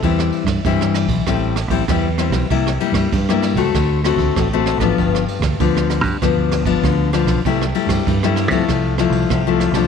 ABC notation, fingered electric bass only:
X:1
M:4/4
L:1/16
Q:1/4=97
K:C
V:1 name="Fingered electric bass" clef=bass
E,,2 z G,, G,,3 B,,, A,,,3 A,,, E,,3 B,,, | C,,2 z G,, G,,3 _D,, =D,,3 D,, A,,,3 A,,, | G,,,2 z D,, D,,3 G,, D,,3 G,,, D,,3 B,,, | C,,2 z G,, G,,3 C, C,,3 C,, C,,3 C,, |]